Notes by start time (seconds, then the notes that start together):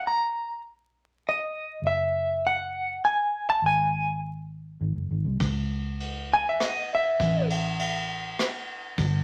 0.07 A#5
1.29 D#5
1.82 F#1
1.87 E5
2.47 F#5
3.05 G#5
3.50 A5
3.62 G#1
3.66 G#5
4.81 G#1
4.96 F#1
5.11 G#1
5.25 C2
5.40 C#2, kick, ride
6.00 ride
6.33 G#5
6.49 E5
6.60 D#5, cross-stick, ride
6.95 E5
7.20 A1, kick, ride
7.50 ride
7.79 ride
8.39 cross-stick, ride
8.98 G1, kick, ride